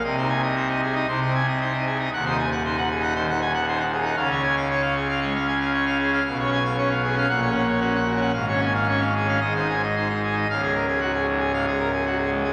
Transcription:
<<
  \new Staff \with { instrumentName = "Pipe organ" } { \time 4/4 \key aes \major \tempo 4 = 116 << { ees''16 c''16 aes''16 ees''16 c''16 ees''16 aes'16 ees''16 c''16 ees''16 aes''16 ees''16 c''16 ees''16 aes'16 ees''16 | \key des \major ges''16 c''16 aes''16 ges''16 c''16 ges''16 aes'16 ges''16 c''16 ges''16 aes''16 ges''16 c''16 ges''16 aes'16 ges''16 | f''16 des''16 aes''16 f''16 des''16 f''16 aes'16 f''16 des''16 f''16 aes''16 f''16 des''16 f''16 aes'16 f''16 | f''16 des''16 aes''16 f''16 des''16 f''16 aes'16 f''16 ges''16 des''16 ges''16 des''16 ges'16 ges''16 ges'16 ges''16 |
f''16 des''16 aes''16 f''16 des''16 f''16 aes'16 f''16 ees''16 c''16 aes''16 ees''16 c''16 ees''16 aes'16 ees''16 | f''16 aes'16 bes'16 aes'16 ges'16 aes'16 aes,16 aes'16 f''16 aes'16 bes'16 aes'16 ges'16 aes'16 aes,16 aes'16 | } \\ { \tuplet 3/2 { c8 ees'8 r8 ees'8 r8 ees'8 c8 c'8 r8 ees'8 r8 ees'8 } | \tuplet 3/2 { ees,8 ees'8 r8 ees'8 r8 ees'8 ees8 ees'8 r8 ees'8 r8 ees'8 } | des2 aes8 r4. | \tuplet 3/2 { ces8 des'8 r8 des'8 r8 des'8 bes,8 des'8 r8 des'8 r8 des'8 } |
\tuplet 3/2 { aes,8 des'8 r8 des'8 r8 des'8 aes,8 ees'8 r8 ees'8 r8 ees'8 } | des,2 aes,16 r4. r16 | } >> }
  \new Staff \with { instrumentName = "Pipe organ" } { \clef bass \time 4/4 \key aes \major c,2 c,2 | \key des \major ees,,1 | des,1 | ces,2 bes,,2 |
aes,,2 aes,,2 | des,,1 | }
>>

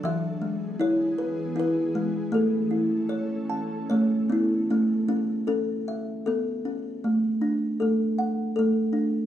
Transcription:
<<
  \new Staff \with { instrumentName = "Kalimba" } { \time 3/4 \key a \major \tempo 4 = 78 << { e8 gis8 e'8 b'8 e'8 gis8 | a8 e'8 cis''8 a''8 cis''8 e'8 | a4 a'8 e''8 a'8 cis'8 | a8 d'8 a'8 fis''8 a'8 d'8 | } \\ { e''4 cis''4 b'4 | a'2 a8 b8 | cis'8 cis'8 cis'4 b4 | r4 a4 a4 | } >> }
  \new Staff \with { instrumentName = "Ambient pad" } { \time 3/4 \key a \major << { <b gis'>2. | <cis' a'>2. | r2. | r2. | } \\ { e2.~ | e2. | r2. | r2. | } >> }
>>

